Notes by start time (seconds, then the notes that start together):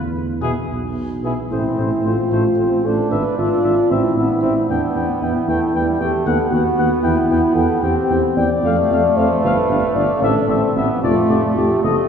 Already playing: E2
0.41 B2 B3 E4 G#4
0.69 B1
1.23 B2 B3 E4 G#4
1.50 A1 A3 C4 E4 C5
1.77 A1 A3 C5
2.04 A1 A3 F4 C5
2.31 A1 A3 C5
2.56 A1 A3 C4 C5
2.84 A1 A3 D4 A4 C5
3.10 G#1 D4 B4 E5
3.37 G#1 D4 F4 E5
3.63 G#1 D4 E5
3.90 A1 C4 E4 E5
4.16 A1 B3 C4 E5
4.42 A1 C4 E5
4.69 E2 B3 D4 G5
4.95 E2 B3 G5
5.21 E2 B3 E4 G5
5.48 E2 A3 B3 G5
5.74 E2 G3 B3 G5
6.00 E2 A3 B3 G4 G5
6.25 D#2 B3 A4 F#5
6.50 D#2 B3 F#4 F#5
6.77 D#2 B3 F#5
7.03 E2 B3 E4 G5
7.29 E2 B3 G5
7.54 E2 B3 A4 G5
7.81 E2 C4 G4 G5
8.09 E2 C4 G5
8.36 E2 C4 D5 G5
8.63 F2 A3 F5
8.89 F2 A3 F5
9.17 F2 A3 C5 F5
9.42 G1 D4 B4 F5
9.68 G1 D4 F5
9.94 G1 D4 D5 F5
10.21 A1 C4 D4 A4 E5
10.48 A1 C4 E5
10.75 A1 B3 C4 E5
11.02 F1 A3 F4 D5
11.28 F1 A3 D5
11.56 F1 A3 G4 D5
11.83 F#1 A3 C4 A4 D#5